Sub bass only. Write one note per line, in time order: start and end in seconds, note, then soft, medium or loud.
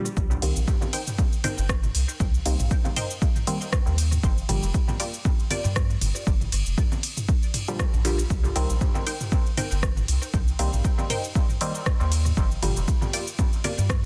0.17 0.36 C2 loud
0.42 0.52 C2 loud
0.56 0.64 A#1 medium
1.58 1.90 G1 medium
1.95 2.05 C2 medium
2.20 2.39 C2 loud
2.46 2.56 C2 loud
2.60 2.68 A#1 medium
3.87 4.18 D#2 loud
4.23 4.42 G1 loud
4.49 4.59 G1 loud
4.63 4.71 F1 medium
5.65 5.96 G2 medium
6.01 6.12 G1 medium
6.27 6.46 G1 loud
6.52 6.62 G1 loud
6.67 6.75 F1 medium
7.94 8.25 A#1 loud
8.30 8.49 C2 loud
8.56 8.66 C2 loud
8.70 8.78 A#1 medium
9.72 10.03 G1 medium
10.08 10.18 C2 medium
10.34 10.53 C2 loud
10.59 10.69 C2 loud
10.73 10.81 A#1 medium
12.00 12.32 D#2 loud
12.37 12.56 G1 loud
12.62 12.73 G1 loud
12.77 12.85 F1 medium
13.78 14.05 G2 medium